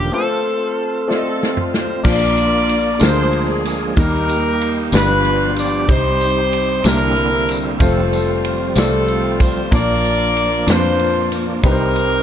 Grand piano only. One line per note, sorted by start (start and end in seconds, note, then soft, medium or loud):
0.00 0.14 A#2 soft
0.00 0.15 A#3 medium
0.00 0.15 C#4 soft
0.00 0.15 D4 medium
0.00 0.13 F4 medium
0.00 0.15 A4 medium
0.00 0.15 A#4 medium
0.12 0.95 A3 medium
0.12 0.95 C4 medium
0.12 0.95 F4 medium
0.12 0.20 B4 medium
0.20 0.99 C5 medium
1.07 1.90 A3 medium
1.07 1.91 C4 medium
1.07 1.91 F4 medium
1.07 1.15 D5 medium
1.15 1.94 D#5 medium
2.03 2.96 A#2 medium
2.03 2.86 A#3 medium
2.03 2.87 D4 medium
2.03 2.87 F4 medium
2.03 2.11 C5 medium
2.12 2.91 D5 medium
2.99 3.92 D3 medium
2.99 3.82 G#3 medium
2.99 3.83 D4 medium
2.99 3.83 F4 medium
2.99 3.83 A#4 medium
3.96 4.88 D#3 medium
3.96 4.79 G3 medium
3.96 4.79 A#3 medium
3.96 4.79 D#4 medium
3.96 4.80 A#4 medium
4.93 5.85 G2 medium
4.93 5.75 G3 medium
4.93 5.75 D4 medium
4.93 5.75 F4 medium
4.93 5.75 B4 medium
5.88 6.80 C3 medium
5.88 6.70 G3 medium
5.88 6.71 C4 medium
5.88 6.71 D#4 medium
5.88 6.71 C5 medium
6.84 7.77 C3 medium
6.84 7.66 A#3 medium
6.84 7.67 D4 medium
6.84 7.67 E4 medium
6.84 7.67 A#4 medium
7.79 8.62 A3 medium
7.79 8.62 C4 medium
7.79 8.62 F4 medium
7.79 8.63 C5 medium
8.75 8.82 G3 medium
8.75 9.58 C4 medium
8.75 9.58 F4 medium
8.75 9.59 D5 medium
8.82 9.61 A3 medium
9.71 10.64 A#2 medium
9.71 10.54 A#3 medium
9.71 10.54 D4 medium
9.71 10.54 F4 medium
9.71 10.55 D5 medium
10.66 11.49 A#3 medium
10.66 11.49 D4 medium
10.66 11.50 F4 medium
10.66 10.75 B4 medium
10.75 11.53 C5 medium
11.63 12.23 C3 medium
11.63 12.23 G3 medium
11.63 12.23 C4 medium
11.63 12.23 D#4 medium
11.63 11.70 B4 medium
11.71 12.23 C5 medium